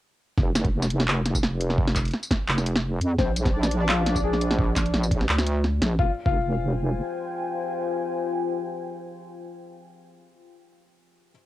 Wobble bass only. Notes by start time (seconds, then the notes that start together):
0.38 F1
1.43 F1
2.48 F1
3.01 F2
3.18 A#1
4.24 A#1
4.94 A#1
5.29 D2
5.82 A#1
5.99 F1
6.26 F1